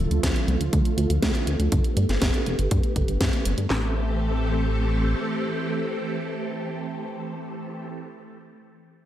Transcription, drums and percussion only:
0.11 closed hi-hat soft
0.23 kick loud
0.23 snare loud
0.23 closed hi-hat medium
0.36 closed hi-hat soft
0.48 closed hi-hat soft
0.61 closed hi-hat soft
0.73 kick loud
0.73 closed hi-hat medium
0.85 closed hi-hat soft
0.98 closed hi-hat medium
1.10 closed hi-hat soft
1.23 kick loud
1.23 snare loud
1.23 closed hi-hat medium
1.35 closed hi-hat soft
1.47 closed hi-hat medium
1.60 closed hi-hat soft
1.72 kick loud
1.72 closed hi-hat medium
1.84 closed hi-hat soft
1.97 closed hi-hat medium
2.09 snare soft
2.09 closed hi-hat soft
2.22 kick loud
2.22 snare loud
2.22 closed hi-hat medium
2.34 closed hi-hat soft
2.46 closed hi-hat soft
2.59 closed hi-hat soft
2.71 kick loud
2.71 closed hi-hat medium
2.83 closed hi-hat soft
2.96 kick medium
2.96 closed hi-hat medium
3.08 closed hi-hat soft
3.21 kick loud
3.21 snare loud
3.21 closed hi-hat medium
3.33 closed hi-hat soft
3.45 closed hi-hat medium
3.58 closed hi-hat soft
3.70 snare loud
3.70 clap medium

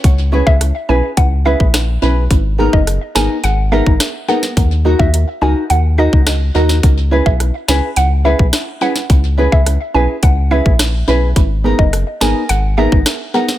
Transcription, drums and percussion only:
0.04 kick loud
0.04 closed hi-hat medium
0.47 kick medium
0.61 cross-stick medium
0.61 closed hi-hat medium
1.17 kick medium
1.17 closed hi-hat medium
1.60 kick loud
1.74 cross-stick loud
1.74 snare loud
1.74 closed hi-hat medium
2.31 kick loud
2.31 closed hi-hat medium
2.73 kick medium
2.87 cross-stick medium
2.87 closed hi-hat medium
3.16 snare loud
3.44 closed hi-hat medium
3.86 kick loud
4.00 cross-stick loud
4.00 snare loud
4.00 closed hi-hat medium
4.43 snare medium
4.57 kick loud
4.57 closed hi-hat medium
5.00 kick medium
5.14 closed hi-hat medium
5.70 closed hi-hat medium
6.13 kick loud
6.27 cross-stick loud
6.27 snare loud
6.27 closed hi-hat medium
6.69 snare medium
6.83 kick loud
6.83 closed hi-hat medium
7.26 kick medium
7.40 cross-stick medium
7.40 closed hi-hat medium
7.68 snare loud
7.96 closed hi-hat medium
8.39 kick loud
8.53 cross-stick medium
8.53 snare loud
8.53 closed hi-hat medium
8.96 snare medium
9.10 kick loud
9.10 closed hi-hat medium
9.52 kick medium
9.66 cross-stick medium
9.66 closed hi-hat medium
10.23 kick loud
10.23 closed hi-hat medium
10.66 kick loud
10.79 cross-stick loud
10.79 snare loud
10.79 closed hi-hat medium
11.36 kick loud
11.36 closed hi-hat medium
11.79 kick medium
11.93 cross-stick medium
11.93 closed hi-hat medium
12.21 snare loud
12.49 closed hi-hat medium
12.92 kick loud
13.06 cross-stick loud
13.06 snare loud
13.06 closed hi-hat medium
13.48 snare medium

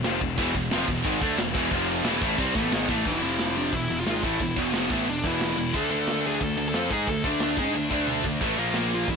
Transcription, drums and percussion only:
0.04 snare loud
0.04 china medium
0.21 kick medium
0.38 kick loud
0.38 china medium
0.55 kick loud
0.71 snare loud
0.71 china medium
0.88 kick medium
1.05 kick loud
1.05 china medium
1.22 kick loud
1.38 snare loud
1.38 china medium
1.55 kick loud
1.71 kick loud
1.71 china medium
2.05 snare loud
2.05 china medium
2.22 kick loud
2.38 kick loud
2.38 china medium
2.55 kick loud
2.72 snare loud
2.72 china medium
2.89 kick medium
3.05 kick loud
3.05 crash medium
3.23 crash medium
3.39 snare loud
3.39 crash medium
3.56 crash medium
3.73 kick medium
3.73 crash medium
3.90 crash medium
4.06 snare loud
4.06 crash medium
4.23 kick loud
4.23 crash medium
4.40 kick loud
4.40 crash medium
4.56 kick loud
4.56 crash medium
4.74 snare loud
4.74 crash medium
4.90 kick loud
4.90 crash medium
5.07 crash medium
5.24 kick loud
5.24 crash medium
5.41 snare loud
5.41 crash medium
5.58 crash medium
5.74 kick loud
5.74 crash medium
5.91 crash medium
6.07 snare loud
6.07 crash medium
6.25 crash medium
6.41 kick medium
6.41 crash medium
6.58 crash medium
6.74 snare loud
6.74 crash medium
6.90 kick loud
6.90 crash medium
7.07 kick loud
7.07 crash medium
7.24 kick loud
7.24 crash medium
7.40 snare loud
7.40 crash medium
7.57 kick loud
7.57 crash medium
7.74 crash medium
7.91 kick loud
7.91 crash medium
8.07 high tom medium
8.24 kick medium
8.41 kick loud
8.41 crash medium
8.57 crash medium
8.74 snare loud
8.74 crash medium
8.91 crash medium
9.08 kick loud
9.08 crash medium

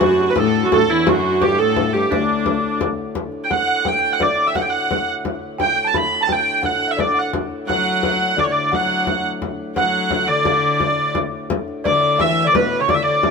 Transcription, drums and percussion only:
0.01 frame drum loud
0.36 frame drum medium
0.72 frame drum loud
0.90 frame drum soft
1.07 frame drum loud
1.42 frame drum medium
1.76 frame drum medium
2.12 frame drum medium
2.46 frame drum medium
2.81 frame drum medium
3.15 frame drum medium
3.32 frame drum soft
3.51 frame drum medium
3.85 frame drum medium
4.20 frame drum medium
4.38 frame drum soft
4.55 frame drum medium
4.91 frame drum medium
5.25 frame drum medium
5.43 frame drum soft
5.60 frame drum medium
5.94 frame drum medium
6.29 frame drum medium
6.63 frame drum medium
6.99 frame drum medium
7.17 frame drum soft
7.33 frame drum medium
7.52 frame drum soft
7.69 frame drum medium
8.03 frame drum medium
8.38 frame drum medium
8.73 frame drum medium
9.07 frame drum medium
9.42 frame drum medium
9.59 frame drum soft
9.76 frame drum medium
10.10 frame drum medium
10.45 frame drum medium
10.80 frame drum medium
11.15 frame drum medium
11.50 frame drum medium
11.68 frame drum soft
11.85 frame drum medium
12.19 frame drum medium
12.55 frame drum medium
12.72 frame drum soft
12.89 frame drum medium
13.23 frame drum medium

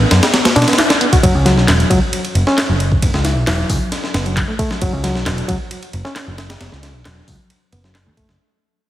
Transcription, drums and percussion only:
0.01 closed hi-hat soft
0.11 snare loud
0.11 closed hi-hat medium
0.11 ride medium
0.23 snare loud
0.23 closed hi-hat soft
0.23 ride medium
0.34 snare loud
0.34 closed hi-hat soft
0.34 ride medium
0.45 snare loud
0.45 closed hi-hat soft
0.45 ride medium
0.56 snare medium
0.56 closed hi-hat medium
0.56 ride medium
0.62 snare medium
0.62 ride medium
0.68 snare medium
0.68 closed hi-hat soft
0.68 ride medium
0.73 snare medium
0.73 ride medium
0.78 snare loud
0.78 clap loud
0.78 closed hi-hat soft
0.78 ride medium
0.90 snare loud
0.90 closed hi-hat soft
0.90 ride medium
1.01 closed hi-hat medium
1.01 ride soft
1.13 kick medium
1.13 closed hi-hat soft
1.13 ride medium
1.23 kick loud
1.23 ride medium
1.46 snare soft
1.46 ride medium
1.58 snare soft
1.68 snare loud
1.68 clap loud
1.68 ride medium
1.80 ride soft
1.91 kick medium
1.91 ride medium
2.13 ride medium
2.25 ride soft
2.35 ride medium
2.47 snare soft
2.58 snare loud
2.58 clap loud
2.58 ride medium
2.80 ride medium
2.92 kick medium
3.02 kick loud
3.02 ride medium
3.14 snare soft
3.25 snare soft
3.25 ride medium
3.47 snare loud
3.47 clap loud
3.47 ride medium
3.70 kick medium
3.70 open hi-hat medium
3.92 snare soft
3.92 ride medium
4.04 snare soft
4.14 snare loud
4.14 ride medium
4.26 ride soft
4.37 kick medium
4.37 clap loud
4.37 ride medium
4.59 kick medium
4.59 ride medium
4.71 snare soft
4.82 kick loud
4.82 ride medium
5.04 snare soft
5.04 ride medium
5.16 snare soft
5.26 snare loud
5.26 clap loud
5.26 ride medium
5.38 ride soft
5.49 kick medium
5.49 ride medium
5.71 ride medium
5.83 ride soft
5.93 ride medium
6.05 snare soft
6.16 snare loud
6.16 clap loud
6.16 ride medium
6.38 snare medium
6.38 ride medium
6.50 snare loud
6.50 ride medium
6.61 snare loud
6.61 ride medium
6.72 snare soft
6.83 snare soft
6.83 ride medium
7.05 snare loud
7.05 clap loud
7.05 ride medium
7.28 kick medium
7.28 open hi-hat medium
7.50 ride medium
7.72 ride medium
7.84 snare soft
7.95 snare loud
7.95 clap loud
7.95 ride medium
8.17 kick medium
8.17 ride medium
8.29 snare soft

